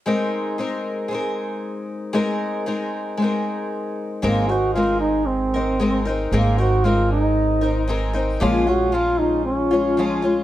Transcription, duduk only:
X:1
M:4/4
L:1/8
Q:1/4=115
K:Abmix
V:1 name="Duduk"
z8 | z8 | B, G F E C3 z | B, G F E3 z2 |
B, G F E D3 z |]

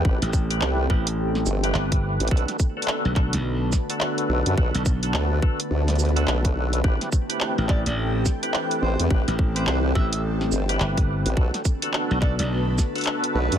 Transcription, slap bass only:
X:1
M:4/4
L:1/16
Q:"Swing 16ths" 1/4=106
K:Ador
V:1 name="Slap bass" clef=bass
z A,,,3 z2 A,,,4 z2 G,,,3 z | z4 z B,,,2 B,,,3 z6 | z B,,,3 z12 | z4 z A,,,2 A,,,3 z6 |
z A,,,3 z2 A,,,4 z2 G,,,3 z | z4 z B,,,2 B,,,3 z6 |]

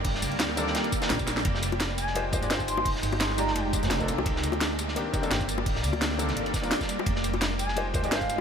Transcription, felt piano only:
X:1
M:4/4
L:1/16
Q:"Swing 16ths" 1/4=171
K:Fdor
V:1 name="Felt piano"
z6 [E,B,CD=A]4 z [E,B,CDF] z4 | z8 [A,EFGc]2 [A,EFGc] [A,EFGd] [A,EFGc]2 z2 | z6 [A,EFGd]4 [A,EFGd]3 [B,CDE=A]3- | [B,CDE=A]8 [E,B,CDG]2 [E,B,CDG] [E,B,CDA] [E,B,CDG]2 z2 |
z6 [E,B,CD=A]4 z [E,B,CDF] z4 | z8 [A,EFGc]2 [A,EFGc] [A,EFGd] [A,EFGc]2 z2 |]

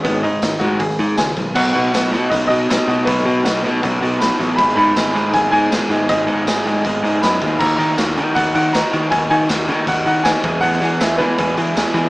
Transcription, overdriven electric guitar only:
X:1
M:4/4
L:1/8
Q:1/4=159
K:B
V:1 name="Overdriven electric guitar"
[G,,D,G,] [G,,D,] [G,,D,] [G,,D,G,] [G,,D,] [G,,D,] [G,,D,] [G,,D,] | [B,,F,B,DF] [B,,F,B,DF] [B,,F,B,DF] [B,,F,B,DF] [B,,F,B,DF] [B,,F,B,DF] [B,,F,B,DF] [B,,F,B,DF] | [B,,F,B,DF] [B,,F,B,DF] [B,,F,B,DF] [B,,F,B,DF] [B,,F,B,DF] [B,,F,B,DF] [B,,F,B,DF] [B,,F,B,DF] | [G,,D,G,B,DG] [G,,D,G,B,DG] [G,,D,G,B,DG] [G,,D,G,B,DG] [G,,D,G,B,DG] [G,,D,G,B,DG] [G,,D,G,B,DG] [G,,D,G,B,DG] |
[G,,D,G,B,DG] [G,,D,G,B,DG] [G,,D,G,B,DG] [G,,D,G,B,DG] [G,,D,G,B,DG] [G,,D,G,B,DG] [G,,D,G,B,DG] [G,,D,G,B,DG] | [D,A,DF] [D,A,DF] [D,A,DF] [D,A,DF] [D,A,DF] [D,A,DF] [D,A,DF] [D,A,DF] | [D,A,DF] [D,A,DF] [D,A,DF] [D,A,DF] [D,A,DF] [D,A,DF] [D,A,DF] [E,,B,,E,G,B,G] | [E,,B,,E,G,B,G] [E,,B,,E,G,B,G] [E,,B,,E,G,B,G] [E,,B,,E,G,B,G] [E,,B,,E,G,B,G] [E,,B,,E,G,B,G] [E,,B,,E,G,B,G] [E,,B,,E,G,B,G] |]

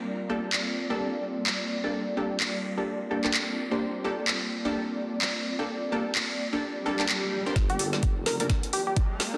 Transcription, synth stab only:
X:1
M:4/4
L:1/16
Q:"Swing 16ths" 1/4=128
K:Gm
V:1 name="Synth stab"
z2 [B,DGA] z4 [B,DGA]8 [B,DGA] | z2 [B,DGA] z4 [B,DGA] z2 [B,DGA] [B,DGA] z3 [B,DGc]- | [B,DGc]2 [B,DGA] z4 [B,DGA]8 [B,DGA] | z2 [B,DGA] z4 [B,DGA] z2 [B,DGA] [B,DGA] z3 [B,DGc]- |
[B,DGc]2 [B,DGA] z4 [B,DGA]8 [B,DGA] |]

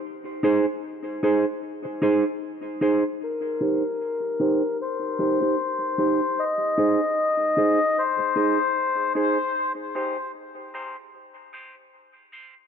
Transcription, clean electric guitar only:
X:1
M:4/4
L:1/16
Q:"Swing 16ths" 1/4=76
K:Cm
V:1 name="Clean electric guitar"
z2 [EAc] z3 [EAc] z3 [EAc] z3 [EAc] z | z2 [EGc] z3 [EGc] z3 [EGc] [EGc] z2 [EGc] z | z2 [EAc] z3 [EAc] z3 [EAc] z3 [EAc] z | z2 [EGc] z3 [EGc] z3 [EGc] z3 [EGc] z |]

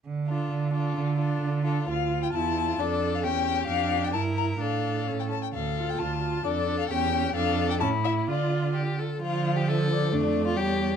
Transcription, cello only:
X:1
M:2/4
L:1/8
Q:1/4=132
K:Dm
V:1 name="Cello" clef=bass
D,2 D,2 | D,2 D,2 | D,,2 E,,2 | F,,2 E,,2 |
F,,2 G,,2 | A,,3 z | D,,2 D,,2 | F,,2 E,,2 |
F,,2 A,,2 | D,3 z | D,4 | F,,2 E,,2 |]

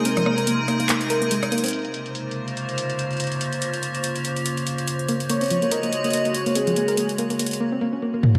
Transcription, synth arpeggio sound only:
X:1
M:4/4
L:1/16
Q:"Swing 16ths" 1/4=143
K:Bbm
V:1 name="Synth arpeggio sound"
C F, B, B B, z B, B, B, z B B, A, z B, C | z16 | z16 | B, z B, C F, B, B B, z B, B, B, z B, C F, |
B, B B, z B, B, B, z B, C B, D B, B, B, z |]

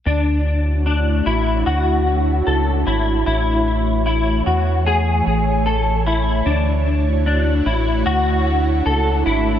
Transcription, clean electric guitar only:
X:1
M:4/4
L:1/8
Q:1/4=75
K:Dlyd
V:1 name="Clean electric guitar"
D2 D E F2 A E | E2 E F G2 A E | D2 D E F2 A E |]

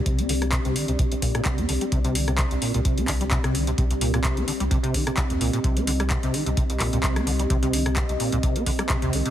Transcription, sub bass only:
X:1
M:4/4
L:1/16
Q:"Swing 16ths" 1/4=129
K:Cm
V:1 name="Sub bass" clef=bass
C,,4- C,, C,, z C,, z4 z E,, C,, z | C,,4- C,, C,, z C,, z C,,4 C,,3 | C,,4- C,, C,, z C,, z4 z E,, C,, z | C,,4- C,, C,, z C,, z C,, z C,,4- C,, |
C,,4- C,, C,, z C,, z4 z E,, C,, z |]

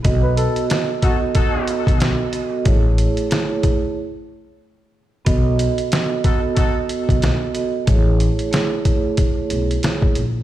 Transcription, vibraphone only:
X:1
M:4/4
L:1/8
Q:"Swing 16ths" 1/4=92
K:Alyd
V:1 name="Vibraphone"
[B,FAd]3 [B,FAd]4 [B,FAd] | [A,EGc]2 [A,EGc]2 z4 | [B,FAd]3 [B,FAd]4 [B,FAd] | [A,EGc]2 [A,EGc]4- [A,EGc] z |]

